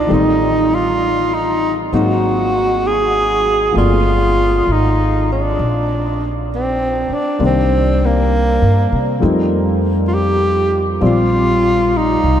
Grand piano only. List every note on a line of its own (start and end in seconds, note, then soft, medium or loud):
0.00 0.11 F4 soft
0.07 1.91 D#3 soft
0.07 1.91 G3 soft
0.07 1.92 A3 soft
0.07 1.92 C4 soft
0.12 1.92 D#4 soft
1.93 3.76 F#3 soft
1.93 3.76 G#3 soft
1.93 3.73 A#3 soft
1.93 3.74 C4 soft
1.93 3.76 D#4 soft
3.72 7.38 F3 soft
3.72 7.39 A3 soft
3.72 7.38 A#3 soft
3.72 7.38 C4 soft
3.78 7.41 D5 soft
7.39 9.20 D#3 soft
7.39 9.19 G3 soft
7.39 9.20 A#3 soft
7.39 9.20 C4 soft
7.39 9.21 D4 soft
9.20 10.99 F3 soft
9.20 11.00 G3 soft
9.20 11.02 A3 soft
9.20 11.01 C4 soft
9.20 11.02 D#4 soft
11.00 12.40 F3 soft
11.00 12.40 G3 soft
11.00 12.40 C4 soft
11.00 12.40 D5 medium